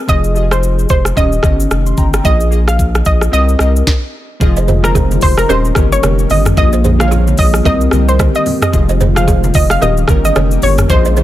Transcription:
Already playing: synth keys C4 G4 A#4 D#5
0.07 sub bass F1, synth keys F3 F4 G#4 D#5, synth pluck D#5, kick, shaker
0.24 shaker
0.34 synth keys F3 F4 G4 D#5, shaker
0.43 synth keys G#4
0.51 synth pluck C5, cross-stick, shaker
0.63 shaker
0.79 shaker
0.89 sub bass F1, synth pluck C5, kick, shaker
1.05 cross-stick, shaker
1.15 sub bass D#1, synth keys D#3 C#4 G4 D#5, synth pluck D#5, kick, shaker
1.32 shaker
1.42 sub bass G1, synth keys D#3 C#4 G4 D#5, kick, cross-stick, shaker
1.60 shaker
1.71 sub bass F1, cross-stick, shaker
1.86 synth keys C6, shaker
1.97 sub bass G1, synth keys G5 A#5, kick, shaker
2.14 synth keys D#5 G5, cross-stick, shaker
2.24 sub bass A#1, synth keys A#3 F4 G#4 D#5, synth pluck D#5, kick, shaker
2.40 shaker
2.51 synth keys A#3 F4 G#4 D#5, shaker
2.68 synth pluck F5, cross-stick, shaker
2.79 kick, shaker
2.95 cross-stick, shaker
3.05 sub bass A#1, synth pluck D#5, kick, shaker
3.21 cross-stick, shaker
3.32 sub bass C2, synth keys C4 G4 A#4 D#5, synth pluck D#5, shaker
3.49 shaker
3.59 sub bass C2, synth keys C4 G4 A#4 D#5, cross-stick, shaker
3.76 shaker
3.87 kick, snare
4.40 sub bass F1, analog synth pad D#3 F3 G#3 C4 F4, synth keys F3 F4 G#4 D#5, kick, low conga, shaker
4.57 balafon C5 D#5, shaker
4.68 balafon G#4 C5, mid tom, high conga, shaker
4.83 synth keys F3 F4 G#4 C5, synth pluck A#4, cross-stick, high conga, shaker
4.95 balafon F4 G#4, kick, low conga, shaker
5.11 high conga, shaker
5.21 sub bass F1, synth pluck C5, kick, open hi-hat, high conga, shaker
5.38 synth pluck A#4, cross-stick, shaker
5.48 sub bass D#1, synth keys D#3 C#4 G4 D#5, analog synth pad D#3 G3 A#3 C#4 G4, balafon G4 A#4, synth pluck C5, low conga, shaker
5.65 shaker
5.75 sub bass G1, synth keys D#3 C#4 G4 A#4, kick, cross-stick, high conga, shaker
5.92 synth pluck C#5, shaker
6.03 sub bass F1, balafon A#4 C#5, cross-stick, high conga, shaker
6.19 shaker
6.30 sub bass G1, synth pluck D#5, open hi-hat, high conga, low conga, shaker
6.45 cross-stick, mid tom, shaker
6.56 sub bass A#1, analog synth pad F3 G#3 F4, synth keys A#3 F4 G#4 D#5, synth pluck D#5, kick, low conga, shaker
6.73 balafon C5 D#5, shaker
6.84 balafon G#4 C5, mid tom, high conga, shaker
6.99 synth keys A#3 F4 G#4 C5, synth pluck F5, cross-stick, high conga, shaker
7.08 balafon G#4, synth keys C#5, shaker
7.12 balafon F4, low conga
7.27 high conga, shaker
7.38 sub bass A#1, synth pluck D#5, kick, open hi-hat, high conga, shaker
7.54 cross-stick, shaker
7.64 sub bass C2, analog synth pad G3 C4 G4, synth keys C4 G4 A#4 D#5, balafon G4 A#4, synth pluck D#5, kick, low conga, shaker
7.81 shaker
7.91 sub bass C2, synth keys C4 G4 A#4 D#5, cross-stick, high conga, shaker
8.09 synth pluck C5, shaker
8.19 balafon C5 D#5, kick, cross-stick, high conga, shaker
8.35 synth pluck D#5, shaker
8.46 open hi-hat, high conga, low conga, shaker
8.62 synth pluck D#5, cross-stick, mid tom, shaker
8.72 sub bass F1, synth keys F3 F4 G#4 D#5, analog synth pad F3 G#3 F4, kick, low conga, shaker
8.89 balafon C5 D#5, shaker
9.01 balafon G#4 C5, mid tom, high conga, shaker
9.15 synth keys F3 F4 G#4 C5, synth pluck F5, cross-stick, high conga, shaker
9.28 balafon F4 G#4, kick, low conga, shaker
9.44 high conga, shaker
9.54 sub bass F1, synth pluck D#5, kick, open hi-hat, high conga, shaker
9.70 synth pluck F5, cross-stick, shaker
9.81 sub bass D#1, synth keys D#3 C#4 G4 D#5, analog synth pad G3 A#3 C#4 G4, balafon G4 A#4, synth pluck D#5, low conga, shaker
9.97 shaker
10.07 sub bass G1, synth keys D#3 C#4 G4 A#4, kick, cross-stick, high conga, shaker
10.25 synth pluck D#5, shaker
10.36 sub bass F1, balafon A#4 C#5, cross-stick, high conga, shaker
10.51 shaker
10.62 sub bass G1, synth pluck C#5, open hi-hat, high conga, low conga, shaker
10.78 cross-stick, mid tom, shaker
10.89 sub bass A#1, analog synth pad F3 G#3 F4, synth keys A#3 F4 G#4 D#5, synth pluck C5, kick, riser, low conga, shaker
11.05 balafon C5 D#5, shaker
11.17 balafon G#4 C5, high conga, shaker

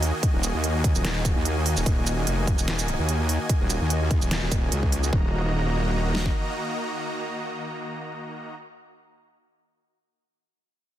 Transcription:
Already playing: wobble bass D#2, supersaw synth D#3 A#3 F#4 D#5 G#5
0.03 open hi-hat
0.23 kick, closed hi-hat
0.34 wobble bass D#1
0.43 closed hi-hat, shaker
0.54 wobble bass D#2
0.64 closed hi-hat
0.84 kick, closed hi-hat
0.95 wobble bass D#1, shaker
1.05 snare, closed hi-hat
1.25 kick, closed hi-hat, shaker
1.36 wobble bass D#2
1.45 closed hi-hat
1.66 open hi-hat
1.77 wobble bass D#1, shaker
1.86 wobble bass D#1, kick, closed hi-hat
2.07 closed hi-hat, shaker
2.27 wobble bass F1, closed hi-hat
2.47 kick, closed hi-hat
2.58 wobble bass D#1, shaker
2.68 snare, closed hi-hat
2.79 shaker
2.88 closed hi-hat
2.99 wobble bass D#2
3.09 closed hi-hat
3.29 open hi-hat
3.49 kick, closed hi-hat
3.61 wobble bass D#1
3.70 closed hi-hat, shaker
3.81 wobble bass D#2
3.90 closed hi-hat
4.11 kick, closed hi-hat
4.22 wobble bass D#1, shaker
4.31 snare, closed hi-hat
4.42 wobble bass D#1
4.52 wobble bass D#1, kick, closed hi-hat, shaker
4.72 wobble bass C#2, closed hi-hat
4.83 kick
4.92 open hi-hat
5.03 shaker
5.13 wobble bass D#1, supersaw synth D#3 A#3 F#4 D#5 A#5, kick
6.15 snare
6.26 kick

